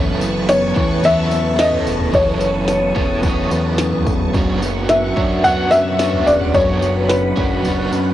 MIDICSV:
0, 0, Header, 1, 7, 480
1, 0, Start_track
1, 0, Tempo, 550459
1, 1867, Time_signature, 4, 2, 24, 8
1, 7095, End_track
2, 0, Start_track
2, 0, Title_t, "String machine"
2, 0, Program_c, 0, 50
2, 0, Note_on_c, 0, 71, 83
2, 0, Note_on_c, 0, 81, 75
2, 0, Note_on_c, 0, 85, 69
2, 1859, Note_on_c, 0, 87, 88
2, 3754, Note_off_c, 0, 71, 0
2, 3756, Note_off_c, 0, 81, 0
2, 3764, Note_off_c, 0, 87, 0
2, 3786, Note_on_c, 0, 78, 74
2, 3788, Note_on_c, 0, 71, 76
2, 5675, Note_off_c, 0, 85, 0
2, 5713, Note_on_c, 0, 83, 77
2, 7095, Note_off_c, 0, 71, 0
2, 7095, Note_off_c, 0, 78, 0
2, 7095, Note_off_c, 0, 83, 0
2, 7095, End_track
3, 0, Start_track
3, 0, Title_t, "Felt piano"
3, 0, Program_c, 1, 0
3, 429, Note_on_c, 1, 73, 91
3, 915, Note_on_c, 1, 76, 116
3, 922, Note_off_c, 1, 73, 0
3, 1385, Note_on_c, 1, 75, 88
3, 1405, Note_off_c, 1, 76, 0
3, 1872, Note_on_c, 1, 73, 85
3, 1880, Note_off_c, 1, 75, 0
3, 3274, Note_off_c, 1, 73, 0
3, 4266, Note_on_c, 1, 76, 88
3, 4744, Note_on_c, 1, 78, 106
3, 4761, Note_off_c, 1, 76, 0
3, 4977, Note_on_c, 1, 76, 113
3, 4993, Note_off_c, 1, 78, 0
3, 5465, Note_on_c, 1, 74, 84
3, 5476, Note_off_c, 1, 76, 0
3, 5707, Note_on_c, 1, 73, 97
3, 5713, Note_off_c, 1, 74, 0
3, 6183, Note_on_c, 1, 71, 74
3, 6202, Note_off_c, 1, 73, 0
3, 6870, Note_off_c, 1, 71, 0
3, 7095, End_track
4, 0, Start_track
4, 0, Title_t, "Overdriven electric guitar"
4, 0, Program_c, 2, 29
4, 0, Note_on_c, 2, 54, 93
4, 0, Note_on_c, 2, 59, 90
4, 0, Note_on_c, 2, 64, 93
4, 0, Note_on_c, 2, 69, 107
4, 0, Note_on_c, 2, 73, 102
4, 644, Note_off_c, 2, 73, 0
4, 647, Note_on_c, 2, 73, 55
4, 661, Note_off_c, 2, 69, 0
4, 671, Note_on_c, 2, 69, 44
4, 672, Note_off_c, 2, 64, 0
4, 673, Note_off_c, 2, 59, 0
4, 695, Note_on_c, 2, 64, 42
4, 721, Note_off_c, 2, 54, 0
4, 892, Note_on_c, 2, 54, 65
4, 897, Note_off_c, 2, 73, 0
4, 899, Note_off_c, 2, 64, 0
4, 902, Note_on_c, 2, 59, 77
4, 905, Note_off_c, 2, 69, 0
4, 909, Note_on_c, 2, 64, 77
4, 916, Note_on_c, 2, 69, 81
4, 924, Note_on_c, 2, 73, 82
4, 1359, Note_off_c, 2, 59, 0
4, 1363, Note_on_c, 2, 59, 58
4, 1373, Note_off_c, 2, 64, 0
4, 1383, Note_on_c, 2, 64, 63
4, 1389, Note_off_c, 2, 69, 0
4, 1400, Note_on_c, 2, 69, 66
4, 1407, Note_off_c, 2, 73, 0
4, 1409, Note_off_c, 2, 54, 0
4, 1411, Note_on_c, 2, 73, 68
4, 1851, Note_on_c, 2, 54, 91
4, 1856, Note_off_c, 2, 59, 0
4, 1858, Note_off_c, 2, 64, 0
4, 1859, Note_on_c, 2, 59, 84
4, 1866, Note_off_c, 2, 69, 0
4, 1868, Note_on_c, 2, 64, 80
4, 1877, Note_on_c, 2, 69, 87
4, 1882, Note_off_c, 2, 73, 0
4, 1885, Note_on_c, 2, 73, 90
4, 2567, Note_off_c, 2, 73, 0
4, 2571, Note_on_c, 2, 73, 50
4, 2586, Note_off_c, 2, 69, 0
4, 2588, Note_off_c, 2, 64, 0
4, 2596, Note_on_c, 2, 69, 53
4, 2597, Note_off_c, 2, 59, 0
4, 2620, Note_on_c, 2, 64, 52
4, 2646, Note_off_c, 2, 54, 0
4, 2806, Note_on_c, 2, 54, 76
4, 2819, Note_off_c, 2, 73, 0
4, 2824, Note_on_c, 2, 59, 75
4, 2831, Note_off_c, 2, 69, 0
4, 2834, Note_off_c, 2, 64, 0
4, 2844, Note_on_c, 2, 64, 87
4, 2859, Note_on_c, 2, 69, 81
4, 2876, Note_on_c, 2, 73, 99
4, 3775, Note_off_c, 2, 54, 0
4, 3779, Note_on_c, 2, 54, 91
4, 3788, Note_off_c, 2, 59, 0
4, 3792, Note_on_c, 2, 59, 91
4, 3793, Note_off_c, 2, 64, 0
4, 3797, Note_on_c, 2, 62, 89
4, 3802, Note_off_c, 2, 69, 0
4, 3806, Note_on_c, 2, 66, 86
4, 3808, Note_off_c, 2, 73, 0
4, 3812, Note_on_c, 2, 73, 98
4, 4497, Note_off_c, 2, 73, 0
4, 4501, Note_on_c, 2, 73, 50
4, 4503, Note_off_c, 2, 54, 0
4, 4512, Note_off_c, 2, 62, 0
4, 4516, Note_off_c, 2, 66, 0
4, 4526, Note_on_c, 2, 66, 44
4, 4527, Note_off_c, 2, 59, 0
4, 4545, Note_on_c, 2, 62, 41
4, 4740, Note_on_c, 2, 54, 74
4, 4744, Note_off_c, 2, 73, 0
4, 4747, Note_off_c, 2, 62, 0
4, 4748, Note_on_c, 2, 59, 66
4, 4756, Note_off_c, 2, 66, 0
4, 4757, Note_on_c, 2, 62, 79
4, 4766, Note_on_c, 2, 66, 71
4, 4772, Note_on_c, 2, 73, 78
4, 5215, Note_off_c, 2, 59, 0
4, 5218, Note_on_c, 2, 59, 63
4, 5223, Note_off_c, 2, 54, 0
4, 5229, Note_off_c, 2, 62, 0
4, 5236, Note_off_c, 2, 66, 0
4, 5240, Note_on_c, 2, 62, 67
4, 5245, Note_off_c, 2, 73, 0
4, 5252, Note_on_c, 2, 66, 63
4, 5264, Note_on_c, 2, 73, 62
4, 5701, Note_on_c, 2, 54, 74
4, 5709, Note_off_c, 2, 59, 0
4, 5711, Note_off_c, 2, 62, 0
4, 5713, Note_on_c, 2, 59, 87
4, 5717, Note_off_c, 2, 66, 0
4, 5721, Note_on_c, 2, 62, 78
4, 5728, Note_on_c, 2, 66, 92
4, 5732, Note_off_c, 2, 73, 0
4, 5736, Note_on_c, 2, 73, 97
4, 6413, Note_off_c, 2, 73, 0
4, 6417, Note_on_c, 2, 73, 54
4, 6424, Note_off_c, 2, 54, 0
4, 6434, Note_off_c, 2, 62, 0
4, 6434, Note_off_c, 2, 66, 0
4, 6443, Note_off_c, 2, 59, 0
4, 6445, Note_on_c, 2, 66, 48
4, 6467, Note_on_c, 2, 62, 39
4, 6648, Note_on_c, 2, 54, 73
4, 6662, Note_off_c, 2, 73, 0
4, 6674, Note_on_c, 2, 59, 77
4, 6676, Note_off_c, 2, 66, 0
4, 6677, Note_off_c, 2, 62, 0
4, 6688, Note_on_c, 2, 62, 78
4, 6708, Note_on_c, 2, 66, 74
4, 6724, Note_on_c, 2, 73, 88
4, 7095, Note_off_c, 2, 54, 0
4, 7095, Note_off_c, 2, 59, 0
4, 7095, Note_off_c, 2, 62, 0
4, 7095, Note_off_c, 2, 66, 0
4, 7095, Note_off_c, 2, 73, 0
4, 7095, End_track
5, 0, Start_track
5, 0, Title_t, "Clean electric guitar"
5, 0, Program_c, 3, 27
5, 0, Note_on_c, 3, 52, 83
5, 0, Note_on_c, 3, 61, 52
5, 174, Note_off_c, 3, 52, 0
5, 185, Note_on_c, 3, 52, 61
5, 424, Note_off_c, 3, 61, 0
5, 427, Note_on_c, 3, 59, 68
5, 669, Note_on_c, 3, 61, 61
5, 897, Note_off_c, 3, 52, 0
5, 907, Note_on_c, 3, 52, 63
5, 1143, Note_off_c, 3, 59, 0
5, 1147, Note_on_c, 3, 59, 61
5, 1384, Note_off_c, 3, 61, 0
5, 1388, Note_on_c, 3, 61, 74
5, 1620, Note_off_c, 3, 59, 0
5, 1623, Note_on_c, 3, 59, 57
5, 1851, Note_off_c, 3, 52, 0
5, 1862, Note_on_c, 3, 52, 86
5, 2089, Note_off_c, 3, 52, 0
5, 2100, Note_on_c, 3, 52, 53
5, 2335, Note_off_c, 3, 59, 0
5, 2338, Note_on_c, 3, 59, 67
5, 2578, Note_off_c, 3, 61, 0
5, 2581, Note_on_c, 3, 61, 61
5, 2813, Note_off_c, 3, 52, 0
5, 2824, Note_on_c, 3, 52, 64
5, 3061, Note_off_c, 3, 59, 0
5, 3064, Note_on_c, 3, 59, 59
5, 3303, Note_off_c, 3, 61, 0
5, 3306, Note_on_c, 3, 61, 61
5, 3545, Note_off_c, 3, 59, 0
5, 3548, Note_on_c, 3, 59, 54
5, 3785, Note_off_c, 3, 52, 0
5, 3789, Note_on_c, 3, 54, 83
5, 4021, Note_off_c, 3, 54, 0
5, 4031, Note_on_c, 3, 54, 59
5, 4269, Note_off_c, 3, 59, 0
5, 4273, Note_on_c, 3, 59, 64
5, 4299, Note_off_c, 3, 61, 0
5, 4394, Note_off_c, 3, 59, 0
5, 4394, Note_on_c, 3, 61, 54
5, 4509, Note_on_c, 3, 62, 63
5, 4740, Note_off_c, 3, 54, 0
5, 4751, Note_on_c, 3, 54, 56
5, 4979, Note_off_c, 3, 61, 0
5, 4990, Note_on_c, 3, 61, 57
5, 5214, Note_off_c, 3, 62, 0
5, 5224, Note_on_c, 3, 62, 67
5, 5463, Note_off_c, 3, 61, 0
5, 5467, Note_on_c, 3, 61, 56
5, 5698, Note_off_c, 3, 54, 0
5, 5708, Note_on_c, 3, 54, 90
5, 5937, Note_off_c, 3, 54, 0
5, 5948, Note_on_c, 3, 54, 58
5, 6184, Note_off_c, 3, 61, 0
5, 6188, Note_on_c, 3, 61, 64
5, 6422, Note_off_c, 3, 62, 0
5, 6432, Note_on_c, 3, 62, 64
5, 6655, Note_off_c, 3, 54, 0
5, 6666, Note_on_c, 3, 54, 61
5, 6906, Note_off_c, 3, 61, 0
5, 6909, Note_on_c, 3, 61, 60
5, 7095, Note_off_c, 3, 54, 0
5, 7095, Note_off_c, 3, 61, 0
5, 7095, Note_off_c, 3, 62, 0
5, 7095, End_track
6, 0, Start_track
6, 0, Title_t, "Analog synth bass"
6, 0, Program_c, 4, 38
6, 0, Note_on_c, 4, 30, 107
6, 632, Note_off_c, 4, 30, 0
6, 669, Note_on_c, 4, 40, 97
6, 1593, Note_off_c, 4, 40, 0
6, 1631, Note_on_c, 4, 28, 89
6, 1857, Note_off_c, 4, 28, 0
6, 1860, Note_on_c, 4, 30, 101
6, 2549, Note_off_c, 4, 30, 0
6, 2583, Note_on_c, 4, 28, 95
6, 3041, Note_off_c, 4, 28, 0
6, 3062, Note_on_c, 4, 40, 87
6, 3544, Note_on_c, 4, 28, 96
6, 3557, Note_off_c, 4, 40, 0
6, 3773, Note_off_c, 4, 28, 0
6, 3788, Note_on_c, 4, 30, 108
6, 4473, Note_off_c, 4, 30, 0
6, 4507, Note_on_c, 4, 42, 81
6, 5432, Note_off_c, 4, 42, 0
6, 5476, Note_on_c, 4, 28, 85
6, 5699, Note_off_c, 4, 28, 0
6, 5709, Note_on_c, 4, 30, 108
6, 6393, Note_off_c, 4, 30, 0
6, 6430, Note_on_c, 4, 30, 93
6, 6884, Note_off_c, 4, 30, 0
6, 6906, Note_on_c, 4, 42, 73
6, 7095, Note_off_c, 4, 42, 0
6, 7095, End_track
7, 0, Start_track
7, 0, Title_t, "Drums"
7, 186, Note_on_c, 9, 54, 73
7, 273, Note_off_c, 9, 54, 0
7, 426, Note_on_c, 9, 38, 112
7, 428, Note_on_c, 9, 54, 92
7, 513, Note_off_c, 9, 38, 0
7, 515, Note_off_c, 9, 54, 0
7, 666, Note_on_c, 9, 36, 97
7, 666, Note_on_c, 9, 43, 78
7, 753, Note_off_c, 9, 36, 0
7, 753, Note_off_c, 9, 43, 0
7, 904, Note_on_c, 9, 43, 61
7, 904, Note_on_c, 9, 54, 63
7, 991, Note_off_c, 9, 43, 0
7, 991, Note_off_c, 9, 54, 0
7, 1144, Note_on_c, 9, 54, 62
7, 1232, Note_off_c, 9, 54, 0
7, 1385, Note_on_c, 9, 38, 109
7, 1387, Note_on_c, 9, 54, 87
7, 1472, Note_off_c, 9, 38, 0
7, 1474, Note_off_c, 9, 54, 0
7, 1505, Note_on_c, 9, 43, 66
7, 1592, Note_off_c, 9, 43, 0
7, 1627, Note_on_c, 9, 54, 61
7, 1715, Note_off_c, 9, 54, 0
7, 1744, Note_on_c, 9, 43, 71
7, 1832, Note_off_c, 9, 43, 0
7, 1862, Note_on_c, 9, 43, 108
7, 1862, Note_on_c, 9, 54, 60
7, 1863, Note_on_c, 9, 36, 106
7, 1949, Note_off_c, 9, 43, 0
7, 1949, Note_off_c, 9, 54, 0
7, 1950, Note_off_c, 9, 36, 0
7, 2098, Note_on_c, 9, 54, 78
7, 2185, Note_off_c, 9, 54, 0
7, 2335, Note_on_c, 9, 38, 103
7, 2338, Note_on_c, 9, 54, 90
7, 2423, Note_off_c, 9, 38, 0
7, 2425, Note_off_c, 9, 54, 0
7, 2582, Note_on_c, 9, 36, 93
7, 2669, Note_off_c, 9, 36, 0
7, 2817, Note_on_c, 9, 43, 64
7, 2817, Note_on_c, 9, 54, 66
7, 2821, Note_on_c, 9, 36, 89
7, 2904, Note_off_c, 9, 43, 0
7, 2904, Note_off_c, 9, 54, 0
7, 2908, Note_off_c, 9, 36, 0
7, 3063, Note_on_c, 9, 54, 67
7, 3150, Note_off_c, 9, 54, 0
7, 3298, Note_on_c, 9, 38, 109
7, 3300, Note_on_c, 9, 54, 102
7, 3385, Note_off_c, 9, 38, 0
7, 3387, Note_off_c, 9, 54, 0
7, 3428, Note_on_c, 9, 43, 66
7, 3515, Note_off_c, 9, 43, 0
7, 3546, Note_on_c, 9, 36, 89
7, 3546, Note_on_c, 9, 54, 60
7, 3633, Note_off_c, 9, 36, 0
7, 3633, Note_off_c, 9, 54, 0
7, 3664, Note_on_c, 9, 43, 64
7, 3751, Note_off_c, 9, 43, 0
7, 3787, Note_on_c, 9, 43, 108
7, 3787, Note_on_c, 9, 54, 58
7, 3788, Note_on_c, 9, 36, 108
7, 3874, Note_off_c, 9, 43, 0
7, 3874, Note_off_c, 9, 54, 0
7, 3875, Note_off_c, 9, 36, 0
7, 4033, Note_on_c, 9, 54, 75
7, 4120, Note_off_c, 9, 54, 0
7, 4265, Note_on_c, 9, 38, 108
7, 4267, Note_on_c, 9, 54, 84
7, 4352, Note_off_c, 9, 38, 0
7, 4355, Note_off_c, 9, 54, 0
7, 4509, Note_on_c, 9, 36, 96
7, 4509, Note_on_c, 9, 43, 70
7, 4596, Note_off_c, 9, 36, 0
7, 4596, Note_off_c, 9, 43, 0
7, 4750, Note_on_c, 9, 43, 67
7, 4750, Note_on_c, 9, 54, 65
7, 4837, Note_off_c, 9, 43, 0
7, 4837, Note_off_c, 9, 54, 0
7, 4988, Note_on_c, 9, 54, 63
7, 5076, Note_off_c, 9, 54, 0
7, 5226, Note_on_c, 9, 38, 109
7, 5228, Note_on_c, 9, 54, 92
7, 5314, Note_off_c, 9, 38, 0
7, 5316, Note_off_c, 9, 54, 0
7, 5349, Note_on_c, 9, 43, 63
7, 5436, Note_off_c, 9, 43, 0
7, 5470, Note_on_c, 9, 54, 64
7, 5557, Note_off_c, 9, 54, 0
7, 5591, Note_on_c, 9, 43, 63
7, 5678, Note_off_c, 9, 43, 0
7, 5706, Note_on_c, 9, 43, 110
7, 5706, Note_on_c, 9, 54, 61
7, 5709, Note_on_c, 9, 36, 117
7, 5793, Note_off_c, 9, 43, 0
7, 5793, Note_off_c, 9, 54, 0
7, 5796, Note_off_c, 9, 36, 0
7, 5950, Note_on_c, 9, 54, 76
7, 6037, Note_off_c, 9, 54, 0
7, 6186, Note_on_c, 9, 38, 118
7, 6189, Note_on_c, 9, 54, 86
7, 6274, Note_off_c, 9, 38, 0
7, 6276, Note_off_c, 9, 54, 0
7, 6429, Note_on_c, 9, 36, 94
7, 6430, Note_on_c, 9, 43, 68
7, 6516, Note_off_c, 9, 36, 0
7, 6517, Note_off_c, 9, 43, 0
7, 6668, Note_on_c, 9, 43, 63
7, 6668, Note_on_c, 9, 54, 60
7, 6755, Note_off_c, 9, 43, 0
7, 6755, Note_off_c, 9, 54, 0
7, 6911, Note_on_c, 9, 54, 67
7, 6998, Note_off_c, 9, 54, 0
7, 7095, End_track
0, 0, End_of_file